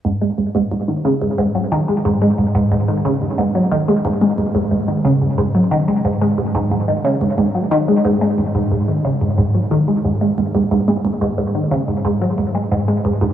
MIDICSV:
0, 0, Header, 1, 2, 480
1, 0, Start_track
1, 0, Tempo, 666667
1, 35, Time_signature, 4, 2, 24, 8
1, 9600, End_track
2, 0, Start_track
2, 0, Title_t, "Synth arpeggio sound"
2, 0, Program_c, 0, 84
2, 36, Note_on_c, 0, 44, 92
2, 100, Note_off_c, 0, 44, 0
2, 156, Note_on_c, 0, 56, 69
2, 194, Note_off_c, 0, 56, 0
2, 275, Note_on_c, 0, 44, 66
2, 339, Note_off_c, 0, 44, 0
2, 395, Note_on_c, 0, 44, 93
2, 459, Note_off_c, 0, 44, 0
2, 515, Note_on_c, 0, 44, 74
2, 554, Note_off_c, 0, 44, 0
2, 634, Note_on_c, 0, 51, 67
2, 731, Note_off_c, 0, 51, 0
2, 755, Note_on_c, 0, 49, 92
2, 819, Note_off_c, 0, 49, 0
2, 875, Note_on_c, 0, 44, 71
2, 971, Note_off_c, 0, 44, 0
2, 996, Note_on_c, 0, 44, 90
2, 1034, Note_off_c, 0, 44, 0
2, 1115, Note_on_c, 0, 54, 72
2, 1179, Note_off_c, 0, 54, 0
2, 1237, Note_on_c, 0, 51, 90
2, 1274, Note_off_c, 0, 51, 0
2, 1354, Note_on_c, 0, 56, 66
2, 1419, Note_off_c, 0, 56, 0
2, 1476, Note_on_c, 0, 44, 91
2, 1540, Note_off_c, 0, 44, 0
2, 1596, Note_on_c, 0, 56, 66
2, 1634, Note_off_c, 0, 56, 0
2, 1715, Note_on_c, 0, 44, 70
2, 1779, Note_off_c, 0, 44, 0
2, 1834, Note_on_c, 0, 44, 93
2, 1899, Note_off_c, 0, 44, 0
2, 1956, Note_on_c, 0, 44, 78
2, 1994, Note_off_c, 0, 44, 0
2, 2074, Note_on_c, 0, 51, 67
2, 2171, Note_off_c, 0, 51, 0
2, 2195, Note_on_c, 0, 49, 89
2, 2259, Note_off_c, 0, 49, 0
2, 2315, Note_on_c, 0, 44, 67
2, 2411, Note_off_c, 0, 44, 0
2, 2434, Note_on_c, 0, 44, 90
2, 2473, Note_off_c, 0, 44, 0
2, 2555, Note_on_c, 0, 54, 69
2, 2619, Note_off_c, 0, 54, 0
2, 2674, Note_on_c, 0, 51, 93
2, 2713, Note_off_c, 0, 51, 0
2, 2795, Note_on_c, 0, 56, 73
2, 2859, Note_off_c, 0, 56, 0
2, 2914, Note_on_c, 0, 44, 93
2, 2979, Note_off_c, 0, 44, 0
2, 3034, Note_on_c, 0, 56, 71
2, 3073, Note_off_c, 0, 56, 0
2, 3155, Note_on_c, 0, 44, 70
2, 3219, Note_off_c, 0, 44, 0
2, 3274, Note_on_c, 0, 44, 89
2, 3339, Note_off_c, 0, 44, 0
2, 3394, Note_on_c, 0, 44, 72
2, 3433, Note_off_c, 0, 44, 0
2, 3514, Note_on_c, 0, 51, 69
2, 3611, Note_off_c, 0, 51, 0
2, 3634, Note_on_c, 0, 49, 93
2, 3699, Note_off_c, 0, 49, 0
2, 3755, Note_on_c, 0, 44, 67
2, 3851, Note_off_c, 0, 44, 0
2, 3874, Note_on_c, 0, 44, 93
2, 3913, Note_off_c, 0, 44, 0
2, 3994, Note_on_c, 0, 54, 70
2, 4058, Note_off_c, 0, 54, 0
2, 4114, Note_on_c, 0, 51, 91
2, 4153, Note_off_c, 0, 51, 0
2, 4234, Note_on_c, 0, 56, 69
2, 4298, Note_off_c, 0, 56, 0
2, 4354, Note_on_c, 0, 44, 92
2, 4419, Note_off_c, 0, 44, 0
2, 4475, Note_on_c, 0, 56, 69
2, 4514, Note_off_c, 0, 56, 0
2, 4594, Note_on_c, 0, 44, 70
2, 4659, Note_off_c, 0, 44, 0
2, 4714, Note_on_c, 0, 44, 97
2, 4779, Note_off_c, 0, 44, 0
2, 4834, Note_on_c, 0, 44, 78
2, 4873, Note_off_c, 0, 44, 0
2, 4954, Note_on_c, 0, 51, 71
2, 5051, Note_off_c, 0, 51, 0
2, 5073, Note_on_c, 0, 49, 91
2, 5138, Note_off_c, 0, 49, 0
2, 5194, Note_on_c, 0, 44, 69
2, 5291, Note_off_c, 0, 44, 0
2, 5313, Note_on_c, 0, 44, 94
2, 5352, Note_off_c, 0, 44, 0
2, 5433, Note_on_c, 0, 54, 67
2, 5498, Note_off_c, 0, 54, 0
2, 5553, Note_on_c, 0, 51, 98
2, 5593, Note_off_c, 0, 51, 0
2, 5675, Note_on_c, 0, 56, 68
2, 5739, Note_off_c, 0, 56, 0
2, 5794, Note_on_c, 0, 44, 96
2, 5859, Note_off_c, 0, 44, 0
2, 5914, Note_on_c, 0, 56, 73
2, 5953, Note_off_c, 0, 56, 0
2, 6035, Note_on_c, 0, 44, 68
2, 6099, Note_off_c, 0, 44, 0
2, 6156, Note_on_c, 0, 44, 93
2, 6220, Note_off_c, 0, 44, 0
2, 6275, Note_on_c, 0, 44, 75
2, 6313, Note_off_c, 0, 44, 0
2, 6395, Note_on_c, 0, 51, 66
2, 6491, Note_off_c, 0, 51, 0
2, 6513, Note_on_c, 0, 49, 90
2, 6578, Note_off_c, 0, 49, 0
2, 6634, Note_on_c, 0, 44, 73
2, 6731, Note_off_c, 0, 44, 0
2, 6753, Note_on_c, 0, 44, 92
2, 6793, Note_off_c, 0, 44, 0
2, 6873, Note_on_c, 0, 54, 68
2, 6938, Note_off_c, 0, 54, 0
2, 6992, Note_on_c, 0, 51, 92
2, 7032, Note_off_c, 0, 51, 0
2, 7113, Note_on_c, 0, 56, 65
2, 7178, Note_off_c, 0, 56, 0
2, 7233, Note_on_c, 0, 44, 89
2, 7298, Note_off_c, 0, 44, 0
2, 7353, Note_on_c, 0, 56, 67
2, 7393, Note_off_c, 0, 56, 0
2, 7474, Note_on_c, 0, 44, 71
2, 7539, Note_off_c, 0, 44, 0
2, 7594, Note_on_c, 0, 44, 94
2, 7659, Note_off_c, 0, 44, 0
2, 7714, Note_on_c, 0, 44, 94
2, 7779, Note_off_c, 0, 44, 0
2, 7834, Note_on_c, 0, 56, 73
2, 7873, Note_off_c, 0, 56, 0
2, 7954, Note_on_c, 0, 44, 66
2, 8019, Note_off_c, 0, 44, 0
2, 8073, Note_on_c, 0, 44, 92
2, 8138, Note_off_c, 0, 44, 0
2, 8194, Note_on_c, 0, 44, 76
2, 8233, Note_off_c, 0, 44, 0
2, 8314, Note_on_c, 0, 51, 68
2, 8411, Note_off_c, 0, 51, 0
2, 8434, Note_on_c, 0, 49, 92
2, 8499, Note_off_c, 0, 49, 0
2, 8554, Note_on_c, 0, 44, 71
2, 8651, Note_off_c, 0, 44, 0
2, 8674, Note_on_c, 0, 44, 93
2, 8713, Note_off_c, 0, 44, 0
2, 8795, Note_on_c, 0, 54, 72
2, 8859, Note_off_c, 0, 54, 0
2, 8914, Note_on_c, 0, 44, 69
2, 9011, Note_off_c, 0, 44, 0
2, 9035, Note_on_c, 0, 56, 69
2, 9099, Note_off_c, 0, 56, 0
2, 9155, Note_on_c, 0, 44, 93
2, 9219, Note_off_c, 0, 44, 0
2, 9275, Note_on_c, 0, 56, 67
2, 9313, Note_off_c, 0, 56, 0
2, 9396, Note_on_c, 0, 44, 75
2, 9460, Note_off_c, 0, 44, 0
2, 9514, Note_on_c, 0, 44, 90
2, 9579, Note_off_c, 0, 44, 0
2, 9600, End_track
0, 0, End_of_file